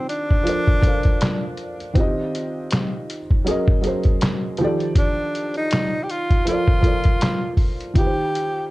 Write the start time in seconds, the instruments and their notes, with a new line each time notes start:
Already playing: felt piano D#3 F3 G4 A4 D5
0.09 tenor saxophone D4, closed hi-hat
0.31 kick
0.44 felt piano F3 F4 A4 A#4, closed hi-hat
0.48 felt piano C5 D5
0.68 kick
0.81 felt piano F3 F4 A4 A#4, kick, closed hi-hat
0.86 felt piano C5 F5
1.03 kick, closed hi-hat
1.21 finger snap, snare, closed hi-hat
1.57 closed hi-hat
1.80 closed hi-hat
1.94 felt piano D#3 C4 F4, kick, closed hi-hat
1.98 felt piano G4 D#5
2.35 closed hi-hat
2.71 finger snap, snare, closed hi-hat
3.10 closed hi-hat
3.31 kick
3.44 felt piano F#3 C#4 G#4, closed hi-hat
3.49 felt piano A#4 D#5
3.68 kick
3.81 felt piano F#3 C#4 G#4, closed hi-hat
3.85 felt piano A#4 C5
4.03 kick, closed hi-hat
4.21 finger snap, snare, closed hi-hat
4.57 felt piano D#3 F3, closed hi-hat
4.61 felt piano G4 A4 D5
4.80 closed hi-hat
4.95 tenor saxophone D4, kick, closed hi-hat
5.35 closed hi-hat
5.54 tenor saxophone D#4, closed hi-hat
5.71 finger snap, snare, closed hi-hat
6.03 tenor saxophone G4
6.10 tenor saxophone F4, closed hi-hat
6.30 kick, closed hi-hat
6.45 felt piano F3 F4 A4 A#4, tenor saxophone F4, closed hi-hat
6.50 felt piano C5 D5
6.68 kick
6.81 felt piano F3 F4 A4 A#4, kick, closed hi-hat
6.85 felt piano C5 D5
7.04 kick, closed hi-hat
7.21 finger snap, snare, closed hi-hat
7.57 kick, open hi-hat
7.81 closed hi-hat
7.94 felt piano D#3 D#4 F4, kick, closed hi-hat
7.98 tenor saxophone G4, felt piano G4 B4
8.06 felt piano C5
8.35 closed hi-hat